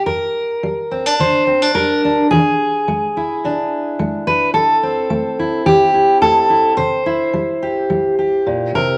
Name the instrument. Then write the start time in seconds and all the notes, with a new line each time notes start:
steel-string acoustic guitar
0.06 G2 A#4
0.63 G3
0.91 C4
1.06 D4
1.19 D3 C5
1.47 C4
1.62 D4
1.75 G3 A#4
2.05 D4
2.31 E3 G#4
2.88 G#3
3.17 E4
3.44 B2 D4
3.99 G#3
4.27 B4
4.54 A2 A4
4.83 C4
5.10 A3
5.39 E4
5.66 E3 G4
5.94 E4
6.21 A3 A4
6.50 E4
6.77 C3 C5
7.06 E4
7.33 G3
7.63 G4
7.90 G3
8.19 G4
8.46 A#2
8.75 C3 A#4